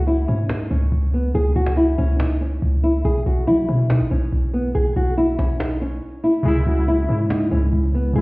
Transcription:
0.00 0.26 C#2 loud
0.07 0.24 E4 medium
0.07 cajon slap soft
0.28 0.69 G#2 loud
0.28 0.45 C#4 medium
0.28 cajon slap soft
0.49 0.66 D#4 medium
0.49 cajon slap loud
0.70 0.91 C#2 loud
0.70 1.10 C#4 medium
0.92 1.33 C#2 loud
0.92 cajon slap soft
1.03 cajon slap soft
1.13 1.30 B3 medium
1.13 cajon slap soft
1.35 1.55 C#2 loud
1.35 1.52 G#4 loud
1.35 cajon slap soft
1.56 1.97 C#2 loud
1.56 1.73 F#4 medium
1.56 cajon slap soft
1.61 cajon slap soft
1.66 cajon slap loud
1.72 cajon slap soft
1.77 1.94 E4 medium
1.98 2.60 C#2 loud
1.98 2.15 C#4 medium
1.98 cajon slap soft
2.19 2.36 D#4 medium
2.19 cajon slap loud
2.41 2.81 C#4 medium
2.62 3.03 C#2 loud
2.62 cajon slap soft
2.84 3.00 E4 medium
2.84 cajon slap soft
3.05 3.25 B1 loud
3.05 3.22 G#4 medium
3.05 cajon slap medium
3.26 3.49 B1 loud
3.26 3.43 F#4 medium
3.26 cajon slap soft
3.33 cajon slap soft
3.40 cajon slap soft
3.47 3.68 F#3 loud
3.47 3.64 E4 loud
3.47 cajon slap soft
3.69 4.02 B2 loud
3.69 3.86 C#4 medium
3.69 cajon slap soft
3.90 4.07 D#4 medium
3.90 cajon slap loud
4.01 4.11 A1 loud
4.11 4.32 B1 loud
4.11 4.51 C#4 medium
4.32 4.73 B1 loud
4.32 cajon slap soft
4.43 cajon slap soft
4.54 4.71 B3 medium
4.54 cajon slap soft
4.75 4.95 B1 loud
4.75 4.92 G#4 loud
4.75 cajon slap soft
4.96 5.37 B1 loud
4.96 5.13 F#4 medium
4.96 cajon slap soft
5.03 cajon slap soft
5.10 cajon slap soft
5.17 5.34 E4 medium
5.17 cajon slap soft
5.39 6.00 B1 loud
5.39 5.56 C#4 medium
5.39 cajon slap medium
5.49 cajon slap soft
5.60 5.77 D#4 medium
5.60 cajon slap loud
5.81 6.21 C#4 medium
6.24 6.41 E4 medium
6.43 6.66 C#2 loud
6.43 6.93 C#3 loud
6.43 6.94 G#3 medium
6.43 6.62 G#4 medium
6.43 cajon slap soft
6.48 6.96 E4 loud
6.66 7.07 C#2 loud
6.66 6.83 F#4 medium
6.66 cajon slap soft
6.74 cajon slap soft
6.81 cajon slap soft
6.88 7.05 E4 medium
6.88 cajon slap soft
7.07 7.50 G#2 loud
7.07 7.41 C#3 medium
7.07 7.42 G#3 medium
7.07 7.26 C#4 medium
7.07 cajon slap soft
7.11 7.43 E4 medium
7.30 7.47 D#4 medium
7.30 cajon slap loud
7.49 7.72 C#2 loud
7.49 8.00 C#3 medium
7.49 8.01 G#3 medium
7.49 7.91 C#4 medium
7.54 8.02 E4 medium
7.73 8.14 C#2 loud
7.73 cajon slap soft
7.84 cajon slap soft
7.94 8.11 B3 medium
7.94 cajon slap soft
8.13 8.21 C#2 loud
8.13 8.21 C#3 loud
8.13 8.21 G#3 medium
8.13 8.21 G#4 loud
8.13 cajon slap soft
8.18 8.21 E4 loud

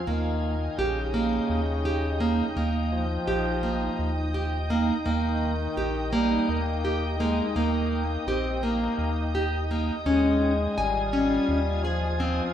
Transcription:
0.07 0.69 D#2 medium
0.07 0.80 D#3 medium
0.07 0.53 A#3 medium
0.07 10.02 D#4 medium
0.07 12.53 D#5 medium
0.07 10.02 G5 medium
0.78 1.40 A#1 medium
0.78 2.75 C#3 medium
0.78 1.02 G4 medium
1.14 1.60 A#3 medium
1.50 2.42 D#2 medium
1.85 2.08 G4 medium
2.20 2.44 A#3 medium
2.56 3.18 D#2 medium
2.56 3.03 A#3 medium
2.92 4.75 F3 medium
3.28 3.89 A#1 medium
3.28 3.51 G4 medium
3.63 4.09 A#3 medium
3.99 4.91 D#2 loud
4.34 4.57 G4 medium
4.70 4.93 A#3 medium
5.06 5.68 D#2 medium
5.06 6.14 D#3 medium
5.06 5.52 A#3 medium
5.77 6.39 A#1 medium
5.77 6.00 G4 medium
6.13 6.51 G3 medium
6.13 6.59 A#3 medium
6.49 7.41 D#2 medium
6.49 7.19 A#3 medium
6.85 7.08 G4 medium
7.19 7.57 G#3 medium
7.19 7.43 A#3 medium
7.55 8.17 D#2 medium
7.55 8.29 A#3 medium
7.55 8.02 A#3 medium
8.27 8.89 A#1 medium
8.27 8.65 C4 medium
8.27 8.51 G4 medium
8.63 9.09 A#3 medium
8.63 9.70 A#3 medium
8.98 9.91 D#2 medium
9.35 9.58 G4 medium
9.71 9.94 A#3 medium
10.06 10.67 D#2 medium
10.06 10.79 G#3 medium
10.06 10.52 C#4 medium
10.06 12.53 F4 medium
10.06 12.53 G#5 medium
10.78 11.39 G#1 medium
10.78 11.87 G3 medium
10.78 11.01 G#5 medium
11.13 11.59 C#4 medium
11.49 12.41 D#2 medium
11.85 12.53 F3 loud
11.85 12.08 G#4 medium
12.20 12.43 C4 medium

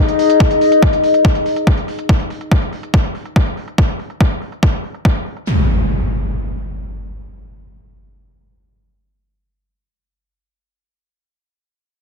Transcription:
0.00 2.09 D#4 medium
0.00 2.09 G#4 medium
0.00 2.09 D#5 medium
0.09 closed hi-hat medium
0.19 open hi-hat loud
0.30 closed hi-hat medium
0.40 kick loud
0.40 closed hi-hat medium
0.51 closed hi-hat medium
0.61 open hi-hat loud
0.72 closed hi-hat medium
0.83 kick loud
0.93 closed hi-hat medium
1.04 open hi-hat loud
1.14 closed hi-hat medium
1.25 kick loud
1.35 closed hi-hat medium
1.46 open hi-hat loud
1.56 closed hi-hat medium
1.67 kick loud
1.67 closed hi-hat medium
1.78 closed hi-hat medium
1.88 open hi-hat loud
1.99 closed hi-hat medium
2.09 kick loud
2.20 closed hi-hat medium
2.30 open hi-hat loud
2.41 closed hi-hat medium
2.52 kick loud
2.62 closed hi-hat medium
2.73 open hi-hat loud
2.83 closed hi-hat medium
2.94 kick loud
3.04 closed hi-hat medium
3.15 open hi-hat loud
3.25 closed hi-hat medium
3.36 kick loud
3.47 closed hi-hat medium
3.57 open hi-hat loud
3.68 closed hi-hat medium
3.78 kick loud
3.89 closed hi-hat medium
3.99 open hi-hat loud
4.10 closed hi-hat medium
4.21 kick loud
4.31 closed hi-hat medium
4.42 open hi-hat loud
4.52 closed hi-hat medium
4.63 kick loud
4.73 closed hi-hat medium
4.84 open hi-hat loud
4.94 closed hi-hat medium
5.05 kick loud
5.16 closed hi-hat medium
5.26 open hi-hat loud
5.37 closed hi-hat medium
5.47 impact medium

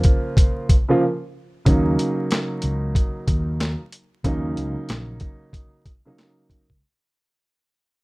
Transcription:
0.00 0.71 C#3 loud
0.00 0.72 F3 medium
0.00 0.72 A#3 medium
0.00 0.73 F4 loud
0.00 closed hi-hat medium
0.05 kick loud
0.37 kick loud
0.37 closed hi-hat loud
0.69 kick medium
0.69 closed hi-hat medium
0.88 1.01 C#3 medium
0.88 1.01 F3 medium
0.88 1.02 A#3 medium
0.88 1.02 F4 loud
1.65 1.95 D#2 loud
1.65 3.77 C#3 loud
1.65 3.77 F#3 medium
1.65 3.78 A#3 medium
1.65 3.78 D#4 loud
1.65 kick loud
1.65 closed hi-hat medium
1.99 closed hi-hat medium
2.31 snare loud
2.31 clap medium
2.31 closed hi-hat medium
2.62 2.92 C#2 medium
2.62 closed hi-hat medium
2.95 kick medium
2.95 closed hi-hat loud
3.27 3.75 D#2 medium
3.27 kick medium
3.27 closed hi-hat medium
3.60 snare loud
3.60 clap medium
3.60 closed hi-hat medium
3.92 closed hi-hat medium
4.24 4.53 D#2 loud
4.24 5.88 C#3 loud
4.24 5.88 F#3 medium
4.24 5.89 A#3 medium
4.24 5.89 D#4 loud
4.24 kick loud
4.24 closed hi-hat medium
4.57 4.75 C#2 medium
4.57 closed hi-hat medium
4.89 5.18 A#1 medium
4.89 snare loud
4.89 clap medium
4.89 closed hi-hat medium
5.20 kick medium
5.20 closed hi-hat medium
5.53 kick medium
5.53 closed hi-hat loud
5.86 kick medium
5.86 closed hi-hat medium
6.05 6.64 C#3 medium
6.05 6.64 F#3 medium
6.05 6.64 A#3 medium
6.05 6.65 D#4 medium
6.18 snare loud
6.18 clap medium
6.18 closed hi-hat medium
6.50 kick medium
6.50 closed hi-hat medium
6.70 6.81 C#2 medium
6.70 kick medium

